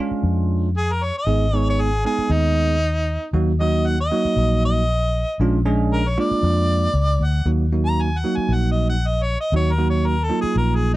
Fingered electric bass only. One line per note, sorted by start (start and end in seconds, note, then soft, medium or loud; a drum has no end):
0.11 muted fingered electric bass stroke soft
0.23 1.10 F2 medium
1.26 2.03 G#1 loud
2.18 muted fingered electric bass stroke soft
2.29 3.17 D#2 loud
3.33 4.10 D#2 loud
4.25 muted fingered electric bass stroke soft
4.36 5.23 A#1 loud
5.40 6.16 A#1 loud
6.31 muted fingered electric bass stroke soft
6.43 6.86 F2 loud
6.94 7.17 C#2 medium
7.20 7.43 D2 medium
7.45 8.23 D#2 loud
8.37 muted fingered electric bass stroke soft
8.49 9.36 A#1 medium
9.52 10.29 D#2 loud
10.43 muted fingered electric bass stroke soft
10.56 10.96 A#1 medium